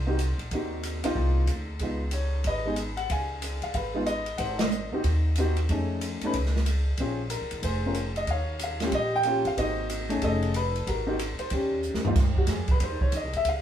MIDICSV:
0, 0, Header, 1, 5, 480
1, 0, Start_track
1, 0, Tempo, 323625
1, 761, Time_signature, 4, 2, 24, 8
1, 20197, End_track
2, 0, Start_track
2, 0, Title_t, "Grand piano"
2, 0, Program_c, 0, 0
2, 0, Note_on_c, 0, 72, 78
2, 99, Note_on_c, 0, 58, 69
2, 106, Note_on_c, 0, 60, 61
2, 117, Note_on_c, 0, 63, 62
2, 127, Note_on_c, 0, 66, 67
2, 261, Note_off_c, 0, 58, 0
2, 264, Note_off_c, 0, 60, 0
2, 269, Note_off_c, 0, 63, 0
2, 275, Note_off_c, 0, 66, 0
2, 531, Note_off_c, 0, 72, 0
2, 787, Note_on_c, 0, 58, 55
2, 797, Note_on_c, 0, 63, 51
2, 798, Note_on_c, 0, 60, 45
2, 810, Note_on_c, 0, 66, 62
2, 1496, Note_off_c, 0, 58, 0
2, 1501, Note_off_c, 0, 63, 0
2, 1502, Note_off_c, 0, 60, 0
2, 1508, Note_off_c, 0, 66, 0
2, 1536, Note_on_c, 0, 58, 76
2, 1541, Note_on_c, 0, 60, 64
2, 1554, Note_on_c, 0, 63, 73
2, 1565, Note_on_c, 0, 65, 87
2, 2162, Note_off_c, 0, 58, 0
2, 2164, Note_off_c, 0, 60, 0
2, 2171, Note_off_c, 0, 63, 0
2, 2176, Note_off_c, 0, 65, 0
2, 2687, Note_on_c, 0, 56, 51
2, 2702, Note_on_c, 0, 59, 45
2, 2712, Note_on_c, 0, 63, 51
2, 2715, Note_on_c, 0, 65, 56
2, 2957, Note_off_c, 0, 56, 0
2, 2964, Note_off_c, 0, 59, 0
2, 2970, Note_off_c, 0, 63, 0
2, 2971, Note_off_c, 0, 65, 0
2, 3162, Note_on_c, 0, 73, 72
2, 3656, Note_off_c, 0, 73, 0
2, 3665, Note_on_c, 0, 75, 91
2, 3675, Note_on_c, 0, 71, 61
2, 3933, Note_on_c, 0, 56, 63
2, 3944, Note_on_c, 0, 59, 53
2, 3953, Note_on_c, 0, 63, 62
2, 3969, Note_on_c, 0, 68, 65
2, 4098, Note_off_c, 0, 56, 0
2, 4100, Note_off_c, 0, 75, 0
2, 4103, Note_off_c, 0, 59, 0
2, 4108, Note_off_c, 0, 63, 0
2, 4116, Note_off_c, 0, 68, 0
2, 4403, Note_on_c, 0, 78, 92
2, 4559, Note_off_c, 0, 71, 0
2, 4577, Note_off_c, 0, 78, 0
2, 4615, Note_on_c, 0, 77, 73
2, 4619, Note_on_c, 0, 80, 86
2, 5339, Note_off_c, 0, 80, 0
2, 5368, Note_off_c, 0, 77, 0
2, 5390, Note_on_c, 0, 77, 84
2, 5465, Note_off_c, 0, 77, 0
2, 5559, Note_on_c, 0, 77, 80
2, 5586, Note_on_c, 0, 71, 62
2, 5846, Note_on_c, 0, 56, 67
2, 5864, Note_on_c, 0, 63, 63
2, 5866, Note_on_c, 0, 59, 61
2, 5874, Note_on_c, 0, 65, 70
2, 6007, Note_off_c, 0, 77, 0
2, 6014, Note_off_c, 0, 56, 0
2, 6024, Note_off_c, 0, 59, 0
2, 6024, Note_off_c, 0, 63, 0
2, 6025, Note_on_c, 0, 75, 99
2, 6028, Note_off_c, 0, 65, 0
2, 6475, Note_off_c, 0, 71, 0
2, 6489, Note_on_c, 0, 78, 81
2, 6516, Note_on_c, 0, 72, 67
2, 6528, Note_off_c, 0, 75, 0
2, 6787, Note_off_c, 0, 78, 0
2, 6800, Note_on_c, 0, 75, 77
2, 6809, Note_off_c, 0, 72, 0
2, 6831, Note_on_c, 0, 72, 49
2, 7304, Note_on_c, 0, 58, 62
2, 7317, Note_on_c, 0, 60, 60
2, 7326, Note_on_c, 0, 66, 70
2, 7327, Note_on_c, 0, 63, 68
2, 7464, Note_off_c, 0, 58, 0
2, 7470, Note_off_c, 0, 60, 0
2, 7474, Note_off_c, 0, 66, 0
2, 7475, Note_off_c, 0, 63, 0
2, 7982, Note_on_c, 0, 58, 69
2, 7987, Note_on_c, 0, 60, 63
2, 7999, Note_on_c, 0, 63, 62
2, 8003, Note_on_c, 0, 66, 74
2, 8193, Note_off_c, 0, 75, 0
2, 8209, Note_off_c, 0, 72, 0
2, 8245, Note_off_c, 0, 58, 0
2, 8247, Note_off_c, 0, 60, 0
2, 8253, Note_off_c, 0, 63, 0
2, 8255, Note_off_c, 0, 66, 0
2, 8457, Note_on_c, 0, 57, 52
2, 8464, Note_on_c, 0, 61, 53
2, 8468, Note_on_c, 0, 63, 52
2, 8483, Note_on_c, 0, 68, 64
2, 9172, Note_off_c, 0, 57, 0
2, 9176, Note_off_c, 0, 61, 0
2, 9178, Note_off_c, 0, 63, 0
2, 9185, Note_off_c, 0, 68, 0
2, 9248, Note_on_c, 0, 57, 67
2, 9263, Note_on_c, 0, 61, 68
2, 9274, Note_on_c, 0, 63, 63
2, 9289, Note_on_c, 0, 71, 85
2, 9396, Note_off_c, 0, 57, 0
2, 9403, Note_off_c, 0, 61, 0
2, 9409, Note_off_c, 0, 63, 0
2, 9416, Note_off_c, 0, 71, 0
2, 10382, Note_on_c, 0, 60, 56
2, 10390, Note_on_c, 0, 61, 53
2, 10401, Note_on_c, 0, 65, 46
2, 10406, Note_on_c, 0, 68, 66
2, 10645, Note_off_c, 0, 60, 0
2, 10649, Note_off_c, 0, 61, 0
2, 10654, Note_off_c, 0, 65, 0
2, 10657, Note_off_c, 0, 68, 0
2, 10829, Note_on_c, 0, 70, 72
2, 11281, Note_off_c, 0, 70, 0
2, 11335, Note_on_c, 0, 72, 84
2, 11340, Note_on_c, 0, 68, 64
2, 11655, Note_on_c, 0, 60, 52
2, 11662, Note_on_c, 0, 61, 59
2, 11666, Note_on_c, 0, 65, 51
2, 11675, Note_on_c, 0, 70, 69
2, 11799, Note_off_c, 0, 60, 0
2, 11802, Note_off_c, 0, 61, 0
2, 11804, Note_off_c, 0, 65, 0
2, 11809, Note_off_c, 0, 70, 0
2, 12057, Note_off_c, 0, 72, 0
2, 12120, Note_on_c, 0, 75, 88
2, 12231, Note_off_c, 0, 68, 0
2, 12277, Note_off_c, 0, 75, 0
2, 12318, Note_on_c, 0, 73, 68
2, 12320, Note_on_c, 0, 77, 95
2, 12748, Note_off_c, 0, 77, 0
2, 12807, Note_on_c, 0, 77, 83
2, 13070, Note_on_c, 0, 61, 59
2, 13073, Note_on_c, 0, 58, 61
2, 13088, Note_on_c, 0, 65, 62
2, 13098, Note_on_c, 0, 67, 72
2, 13200, Note_off_c, 0, 73, 0
2, 13216, Note_off_c, 0, 67, 0
2, 13226, Note_off_c, 0, 61, 0
2, 13227, Note_off_c, 0, 58, 0
2, 13235, Note_off_c, 0, 65, 0
2, 13239, Note_on_c, 0, 67, 71
2, 13269, Note_on_c, 0, 75, 103
2, 13278, Note_off_c, 0, 77, 0
2, 13567, Note_off_c, 0, 75, 0
2, 13581, Note_on_c, 0, 79, 120
2, 13719, Note_on_c, 0, 58, 66
2, 13731, Note_off_c, 0, 67, 0
2, 13736, Note_on_c, 0, 61, 61
2, 13749, Note_on_c, 0, 65, 64
2, 13753, Note_on_c, 0, 67, 74
2, 13993, Note_off_c, 0, 58, 0
2, 14001, Note_off_c, 0, 61, 0
2, 14008, Note_off_c, 0, 65, 0
2, 14010, Note_off_c, 0, 67, 0
2, 14049, Note_on_c, 0, 77, 93
2, 14056, Note_off_c, 0, 79, 0
2, 14123, Note_off_c, 0, 77, 0
2, 14199, Note_on_c, 0, 72, 63
2, 14204, Note_on_c, 0, 58, 56
2, 14216, Note_on_c, 0, 75, 99
2, 14217, Note_on_c, 0, 60, 56
2, 14223, Note_on_c, 0, 63, 57
2, 14232, Note_on_c, 0, 66, 67
2, 14925, Note_off_c, 0, 58, 0
2, 14931, Note_off_c, 0, 60, 0
2, 14934, Note_off_c, 0, 63, 0
2, 14939, Note_off_c, 0, 66, 0
2, 14968, Note_on_c, 0, 57, 68
2, 14973, Note_on_c, 0, 61, 65
2, 14992, Note_on_c, 0, 63, 57
2, 15003, Note_on_c, 0, 68, 73
2, 15100, Note_off_c, 0, 72, 0
2, 15169, Note_off_c, 0, 75, 0
2, 15171, Note_on_c, 0, 69, 69
2, 15192, Note_on_c, 0, 75, 91
2, 15597, Note_off_c, 0, 57, 0
2, 15600, Note_off_c, 0, 61, 0
2, 15609, Note_off_c, 0, 63, 0
2, 15615, Note_off_c, 0, 68, 0
2, 15665, Note_on_c, 0, 71, 91
2, 15670, Note_off_c, 0, 75, 0
2, 16066, Note_off_c, 0, 69, 0
2, 16100, Note_off_c, 0, 71, 0
2, 16133, Note_on_c, 0, 66, 54
2, 16144, Note_on_c, 0, 70, 85
2, 16413, Note_on_c, 0, 58, 70
2, 16413, Note_on_c, 0, 60, 62
2, 16423, Note_off_c, 0, 66, 0
2, 16431, Note_on_c, 0, 63, 63
2, 16445, Note_on_c, 0, 66, 77
2, 16577, Note_off_c, 0, 58, 0
2, 16577, Note_off_c, 0, 60, 0
2, 16586, Note_off_c, 0, 63, 0
2, 16593, Note_off_c, 0, 66, 0
2, 16861, Note_off_c, 0, 70, 0
2, 16901, Note_on_c, 0, 72, 81
2, 17084, Note_off_c, 0, 72, 0
2, 17093, Note_on_c, 0, 67, 74
2, 17106, Note_on_c, 0, 61, 49
2, 17816, Note_off_c, 0, 67, 0
2, 17870, Note_on_c, 0, 44, 70
2, 17884, Note_on_c, 0, 58, 57
2, 17888, Note_on_c, 0, 60, 54
2, 17900, Note_on_c, 0, 63, 60
2, 17902, Note_on_c, 0, 65, 79
2, 17993, Note_off_c, 0, 61, 0
2, 18026, Note_off_c, 0, 44, 0
2, 18033, Note_off_c, 0, 58, 0
2, 18035, Note_off_c, 0, 60, 0
2, 18041, Note_off_c, 0, 63, 0
2, 18042, Note_off_c, 0, 65, 0
2, 18359, Note_on_c, 0, 66, 75
2, 18523, Note_off_c, 0, 66, 0
2, 18542, Note_on_c, 0, 68, 68
2, 18826, Note_off_c, 0, 68, 0
2, 18852, Note_on_c, 0, 71, 83
2, 18945, Note_off_c, 0, 71, 0
2, 18967, Note_on_c, 0, 71, 52
2, 19003, Note_off_c, 0, 71, 0
2, 19038, Note_on_c, 0, 72, 77
2, 19306, Note_on_c, 0, 73, 86
2, 19314, Note_off_c, 0, 72, 0
2, 19476, Note_off_c, 0, 73, 0
2, 19527, Note_on_c, 0, 75, 76
2, 19798, Note_off_c, 0, 75, 0
2, 19827, Note_on_c, 0, 76, 94
2, 19977, Note_off_c, 0, 76, 0
2, 20004, Note_on_c, 0, 77, 87
2, 20197, Note_off_c, 0, 77, 0
2, 20197, End_track
3, 0, Start_track
3, 0, Title_t, "Upright bass"
3, 0, Program_c, 1, 32
3, 0, Note_on_c, 1, 36, 97
3, 527, Note_off_c, 1, 36, 0
3, 563, Note_on_c, 1, 34, 61
3, 737, Note_off_c, 1, 34, 0
3, 759, Note_on_c, 1, 39, 77
3, 1488, Note_off_c, 1, 39, 0
3, 1530, Note_on_c, 1, 34, 58
3, 1701, Note_off_c, 1, 34, 0
3, 1710, Note_on_c, 1, 36, 96
3, 2161, Note_off_c, 1, 36, 0
3, 2170, Note_on_c, 1, 38, 75
3, 2631, Note_off_c, 1, 38, 0
3, 2669, Note_on_c, 1, 37, 82
3, 3587, Note_off_c, 1, 37, 0
3, 3624, Note_on_c, 1, 32, 87
3, 4544, Note_off_c, 1, 32, 0
3, 4592, Note_on_c, 1, 37, 74
3, 5325, Note_off_c, 1, 37, 0
3, 5371, Note_on_c, 1, 44, 64
3, 5542, Note_off_c, 1, 44, 0
3, 5553, Note_on_c, 1, 32, 82
3, 6469, Note_off_c, 1, 32, 0
3, 6504, Note_on_c, 1, 32, 87
3, 7241, Note_off_c, 1, 32, 0
3, 7296, Note_on_c, 1, 33, 62
3, 7464, Note_off_c, 1, 33, 0
3, 7473, Note_on_c, 1, 39, 91
3, 8389, Note_off_c, 1, 39, 0
3, 8440, Note_on_c, 1, 41, 76
3, 9169, Note_off_c, 1, 41, 0
3, 9217, Note_on_c, 1, 42, 61
3, 9385, Note_off_c, 1, 42, 0
3, 9395, Note_on_c, 1, 37, 85
3, 10310, Note_off_c, 1, 37, 0
3, 10351, Note_on_c, 1, 34, 85
3, 10951, Note_off_c, 1, 34, 0
3, 10997, Note_on_c, 1, 37, 59
3, 11136, Note_off_c, 1, 37, 0
3, 11144, Note_on_c, 1, 33, 61
3, 11298, Note_off_c, 1, 33, 0
3, 11307, Note_on_c, 1, 29, 87
3, 12225, Note_off_c, 1, 29, 0
3, 12270, Note_on_c, 1, 39, 87
3, 13187, Note_off_c, 1, 39, 0
3, 13233, Note_on_c, 1, 34, 84
3, 13965, Note_off_c, 1, 34, 0
3, 14014, Note_on_c, 1, 31, 72
3, 14183, Note_off_c, 1, 31, 0
3, 14198, Note_on_c, 1, 32, 86
3, 15111, Note_off_c, 1, 32, 0
3, 15160, Note_on_c, 1, 29, 89
3, 16072, Note_off_c, 1, 29, 0
3, 16120, Note_on_c, 1, 32, 84
3, 16848, Note_off_c, 1, 32, 0
3, 17077, Note_on_c, 1, 39, 92
3, 17673, Note_off_c, 1, 39, 0
3, 17715, Note_on_c, 1, 41, 58
3, 17860, Note_off_c, 1, 41, 0
3, 17869, Note_on_c, 1, 39, 62
3, 18013, Note_off_c, 1, 39, 0
3, 18021, Note_on_c, 1, 44, 80
3, 18491, Note_off_c, 1, 44, 0
3, 18500, Note_on_c, 1, 41, 90
3, 18975, Note_off_c, 1, 41, 0
3, 18987, Note_on_c, 1, 42, 91
3, 19139, Note_off_c, 1, 42, 0
3, 19139, Note_on_c, 1, 39, 46
3, 19289, Note_off_c, 1, 39, 0
3, 19298, Note_on_c, 1, 36, 64
3, 19457, Note_off_c, 1, 36, 0
3, 19465, Note_on_c, 1, 39, 92
3, 19618, Note_off_c, 1, 39, 0
3, 19618, Note_on_c, 1, 36, 60
3, 19771, Note_off_c, 1, 36, 0
3, 19780, Note_on_c, 1, 32, 66
3, 19934, Note_off_c, 1, 32, 0
3, 19943, Note_on_c, 1, 37, 78
3, 20197, Note_off_c, 1, 37, 0
3, 20197, End_track
4, 0, Start_track
4, 0, Title_t, "Muted upright bass strokes"
4, 16892, Note_on_c, 9, 29, 38
4, 17040, Note_off_c, 9, 29, 0
4, 20197, End_track
5, 0, Start_track
5, 0, Title_t, "Drums"
5, 278, Note_on_c, 9, 44, 52
5, 278, Note_on_c, 9, 51, 56
5, 426, Note_off_c, 9, 44, 0
5, 426, Note_off_c, 9, 51, 0
5, 581, Note_on_c, 9, 51, 44
5, 730, Note_off_c, 9, 51, 0
5, 759, Note_on_c, 9, 51, 58
5, 764, Note_on_c, 9, 36, 33
5, 908, Note_off_c, 9, 51, 0
5, 913, Note_off_c, 9, 36, 0
5, 1236, Note_on_c, 9, 44, 53
5, 1236, Note_on_c, 9, 51, 63
5, 1385, Note_off_c, 9, 44, 0
5, 1385, Note_off_c, 9, 51, 0
5, 1538, Note_on_c, 9, 51, 70
5, 1687, Note_off_c, 9, 51, 0
5, 1718, Note_on_c, 9, 36, 34
5, 1867, Note_off_c, 9, 36, 0
5, 2185, Note_on_c, 9, 44, 57
5, 2185, Note_on_c, 9, 51, 55
5, 2333, Note_off_c, 9, 44, 0
5, 2333, Note_off_c, 9, 51, 0
5, 2661, Note_on_c, 9, 51, 53
5, 2672, Note_on_c, 9, 36, 32
5, 2809, Note_off_c, 9, 51, 0
5, 2820, Note_off_c, 9, 36, 0
5, 3131, Note_on_c, 9, 44, 61
5, 3131, Note_on_c, 9, 51, 67
5, 3279, Note_off_c, 9, 44, 0
5, 3279, Note_off_c, 9, 51, 0
5, 3619, Note_on_c, 9, 51, 59
5, 3631, Note_on_c, 9, 36, 33
5, 3768, Note_off_c, 9, 51, 0
5, 3779, Note_off_c, 9, 36, 0
5, 4096, Note_on_c, 9, 44, 57
5, 4096, Note_on_c, 9, 51, 58
5, 4244, Note_off_c, 9, 44, 0
5, 4244, Note_off_c, 9, 51, 0
5, 4408, Note_on_c, 9, 51, 44
5, 4557, Note_off_c, 9, 51, 0
5, 4592, Note_on_c, 9, 51, 65
5, 4597, Note_on_c, 9, 36, 28
5, 4741, Note_off_c, 9, 51, 0
5, 4745, Note_off_c, 9, 36, 0
5, 5072, Note_on_c, 9, 44, 60
5, 5072, Note_on_c, 9, 51, 69
5, 5220, Note_off_c, 9, 44, 0
5, 5220, Note_off_c, 9, 51, 0
5, 5367, Note_on_c, 9, 51, 47
5, 5515, Note_off_c, 9, 51, 0
5, 5544, Note_on_c, 9, 51, 60
5, 5550, Note_on_c, 9, 36, 35
5, 5693, Note_off_c, 9, 51, 0
5, 5699, Note_off_c, 9, 36, 0
5, 6027, Note_on_c, 9, 44, 50
5, 6027, Note_on_c, 9, 51, 53
5, 6175, Note_off_c, 9, 44, 0
5, 6175, Note_off_c, 9, 51, 0
5, 6320, Note_on_c, 9, 51, 46
5, 6468, Note_off_c, 9, 51, 0
5, 6498, Note_on_c, 9, 51, 64
5, 6509, Note_on_c, 9, 36, 28
5, 6646, Note_off_c, 9, 51, 0
5, 6658, Note_off_c, 9, 36, 0
5, 6807, Note_on_c, 9, 51, 61
5, 6813, Note_on_c, 9, 38, 83
5, 6955, Note_off_c, 9, 51, 0
5, 6961, Note_off_c, 9, 38, 0
5, 6989, Note_on_c, 9, 44, 63
5, 7137, Note_off_c, 9, 44, 0
5, 7473, Note_on_c, 9, 51, 58
5, 7476, Note_on_c, 9, 36, 38
5, 7621, Note_off_c, 9, 51, 0
5, 7624, Note_off_c, 9, 36, 0
5, 7943, Note_on_c, 9, 44, 52
5, 7943, Note_on_c, 9, 51, 65
5, 8092, Note_off_c, 9, 44, 0
5, 8092, Note_off_c, 9, 51, 0
5, 8255, Note_on_c, 9, 51, 50
5, 8403, Note_off_c, 9, 51, 0
5, 8437, Note_on_c, 9, 51, 56
5, 8445, Note_on_c, 9, 36, 34
5, 8586, Note_off_c, 9, 51, 0
5, 8594, Note_off_c, 9, 36, 0
5, 8917, Note_on_c, 9, 44, 55
5, 8917, Note_on_c, 9, 51, 69
5, 9065, Note_off_c, 9, 44, 0
5, 9065, Note_off_c, 9, 51, 0
5, 9216, Note_on_c, 9, 51, 52
5, 9364, Note_off_c, 9, 51, 0
5, 9396, Note_on_c, 9, 51, 63
5, 9404, Note_on_c, 9, 36, 35
5, 9544, Note_off_c, 9, 51, 0
5, 9552, Note_off_c, 9, 36, 0
5, 9579, Note_on_c, 9, 38, 29
5, 9727, Note_off_c, 9, 38, 0
5, 9732, Note_on_c, 9, 38, 40
5, 9878, Note_on_c, 9, 44, 47
5, 9878, Note_on_c, 9, 51, 71
5, 9880, Note_off_c, 9, 38, 0
5, 10026, Note_off_c, 9, 44, 0
5, 10026, Note_off_c, 9, 51, 0
5, 10344, Note_on_c, 9, 51, 57
5, 10356, Note_on_c, 9, 36, 31
5, 10493, Note_off_c, 9, 51, 0
5, 10505, Note_off_c, 9, 36, 0
5, 10824, Note_on_c, 9, 44, 64
5, 10824, Note_on_c, 9, 51, 66
5, 10973, Note_off_c, 9, 44, 0
5, 10973, Note_off_c, 9, 51, 0
5, 11136, Note_on_c, 9, 51, 48
5, 11284, Note_off_c, 9, 51, 0
5, 11313, Note_on_c, 9, 36, 35
5, 11314, Note_on_c, 9, 51, 69
5, 11461, Note_off_c, 9, 36, 0
5, 11462, Note_off_c, 9, 51, 0
5, 11784, Note_on_c, 9, 44, 47
5, 11784, Note_on_c, 9, 51, 57
5, 11932, Note_off_c, 9, 44, 0
5, 11932, Note_off_c, 9, 51, 0
5, 12101, Note_on_c, 9, 51, 47
5, 12250, Note_off_c, 9, 51, 0
5, 12269, Note_on_c, 9, 51, 55
5, 12277, Note_on_c, 9, 36, 32
5, 12418, Note_off_c, 9, 51, 0
5, 12425, Note_off_c, 9, 36, 0
5, 12746, Note_on_c, 9, 44, 59
5, 12746, Note_on_c, 9, 51, 66
5, 12894, Note_off_c, 9, 44, 0
5, 12894, Note_off_c, 9, 51, 0
5, 13054, Note_on_c, 9, 51, 46
5, 13060, Note_on_c, 9, 38, 49
5, 13202, Note_off_c, 9, 51, 0
5, 13208, Note_off_c, 9, 38, 0
5, 13227, Note_on_c, 9, 51, 60
5, 13234, Note_on_c, 9, 36, 37
5, 13376, Note_off_c, 9, 51, 0
5, 13383, Note_off_c, 9, 36, 0
5, 13693, Note_on_c, 9, 44, 54
5, 13693, Note_on_c, 9, 51, 56
5, 13842, Note_off_c, 9, 44, 0
5, 13842, Note_off_c, 9, 51, 0
5, 14015, Note_on_c, 9, 51, 46
5, 14164, Note_off_c, 9, 51, 0
5, 14200, Note_on_c, 9, 36, 34
5, 14203, Note_on_c, 9, 51, 62
5, 14348, Note_off_c, 9, 36, 0
5, 14351, Note_off_c, 9, 51, 0
5, 14677, Note_on_c, 9, 44, 65
5, 14677, Note_on_c, 9, 51, 72
5, 14825, Note_off_c, 9, 44, 0
5, 14825, Note_off_c, 9, 51, 0
5, 14983, Note_on_c, 9, 51, 49
5, 15132, Note_off_c, 9, 51, 0
5, 15153, Note_on_c, 9, 51, 61
5, 15161, Note_on_c, 9, 36, 37
5, 15302, Note_off_c, 9, 51, 0
5, 15309, Note_off_c, 9, 36, 0
5, 15462, Note_on_c, 9, 51, 44
5, 15611, Note_off_c, 9, 51, 0
5, 15636, Note_on_c, 9, 44, 43
5, 15636, Note_on_c, 9, 51, 68
5, 15784, Note_off_c, 9, 44, 0
5, 15784, Note_off_c, 9, 51, 0
5, 15953, Note_on_c, 9, 51, 47
5, 16101, Note_off_c, 9, 51, 0
5, 16125, Note_on_c, 9, 51, 61
5, 16126, Note_on_c, 9, 36, 31
5, 16274, Note_off_c, 9, 36, 0
5, 16274, Note_off_c, 9, 51, 0
5, 16602, Note_on_c, 9, 44, 51
5, 16602, Note_on_c, 9, 51, 73
5, 16750, Note_off_c, 9, 44, 0
5, 16750, Note_off_c, 9, 51, 0
5, 16891, Note_on_c, 9, 51, 49
5, 17039, Note_off_c, 9, 51, 0
5, 17059, Note_on_c, 9, 51, 63
5, 17075, Note_on_c, 9, 36, 37
5, 17207, Note_off_c, 9, 51, 0
5, 17223, Note_off_c, 9, 36, 0
5, 17541, Note_on_c, 9, 44, 53
5, 17689, Note_off_c, 9, 44, 0
5, 17716, Note_on_c, 9, 38, 48
5, 17865, Note_off_c, 9, 38, 0
5, 17867, Note_on_c, 9, 43, 76
5, 18016, Note_off_c, 9, 43, 0
5, 18026, Note_on_c, 9, 36, 69
5, 18030, Note_on_c, 9, 38, 38
5, 18030, Note_on_c, 9, 49, 61
5, 18175, Note_off_c, 9, 36, 0
5, 18178, Note_off_c, 9, 38, 0
5, 18178, Note_off_c, 9, 49, 0
5, 18329, Note_on_c, 9, 36, 48
5, 18477, Note_off_c, 9, 36, 0
5, 18492, Note_on_c, 9, 44, 55
5, 18492, Note_on_c, 9, 51, 67
5, 18498, Note_on_c, 9, 38, 35
5, 18505, Note_on_c, 9, 36, 24
5, 18641, Note_off_c, 9, 44, 0
5, 18641, Note_off_c, 9, 51, 0
5, 18646, Note_off_c, 9, 38, 0
5, 18653, Note_off_c, 9, 36, 0
5, 18802, Note_on_c, 9, 51, 47
5, 18810, Note_on_c, 9, 36, 59
5, 18950, Note_off_c, 9, 51, 0
5, 18959, Note_off_c, 9, 36, 0
5, 18985, Note_on_c, 9, 51, 66
5, 19134, Note_off_c, 9, 51, 0
5, 19296, Note_on_c, 9, 36, 48
5, 19444, Note_off_c, 9, 36, 0
5, 19459, Note_on_c, 9, 44, 57
5, 19459, Note_on_c, 9, 51, 65
5, 19471, Note_on_c, 9, 36, 17
5, 19608, Note_off_c, 9, 44, 0
5, 19608, Note_off_c, 9, 51, 0
5, 19619, Note_off_c, 9, 36, 0
5, 19776, Note_on_c, 9, 51, 45
5, 19924, Note_off_c, 9, 51, 0
5, 19946, Note_on_c, 9, 51, 64
5, 19952, Note_on_c, 9, 36, 26
5, 20095, Note_off_c, 9, 51, 0
5, 20100, Note_off_c, 9, 36, 0
5, 20197, End_track
0, 0, End_of_file